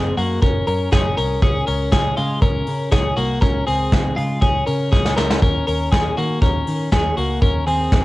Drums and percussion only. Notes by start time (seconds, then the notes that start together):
0.18 open hi-hat
0.42 kick, closed hi-hat
0.67 open hi-hat
0.92 kick, snare, closed hi-hat
1.18 open hi-hat
1.42 kick, closed hi-hat
1.67 open hi-hat
1.92 kick, snare, closed hi-hat
2.17 open hi-hat
2.42 kick, closed hi-hat
2.67 open hi-hat
2.92 kick, snare, closed hi-hat
3.18 open hi-hat
3.42 kick, closed hi-hat
3.67 open hi-hat
3.92 kick, snare, closed hi-hat
4.17 open hi-hat
4.42 kick, closed hi-hat
4.67 open hi-hat
4.93 kick, snare
5.05 snare
5.17 snare
5.30 snare
5.42 kick, closed hi-hat
5.68 open hi-hat
5.92 kick, snare, closed hi-hat
6.18 open hi-hat
6.42 kick, closed hi-hat
6.67 open hi-hat
6.92 kick, snare
7.17 open hi-hat
7.42 kick, closed hi-hat
7.67 open hi-hat
7.92 kick, snare, closed hi-hat